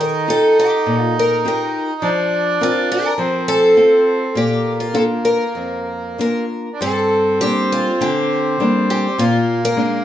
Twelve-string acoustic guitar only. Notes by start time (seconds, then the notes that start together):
0.01 A#4
0.30 A4
0.59 G4
1.00 F4
1.19 A#4
1.48 A#4
2.63 F4
2.92 A#4
3.48 A4
4.37 G4
4.80 F4
4.95 A4
5.25 A#4
6.21 A#4
6.82 A4
7.41 G4
7.72 F4
8.02 G4
8.90 G4
9.19 F4
9.65 A#4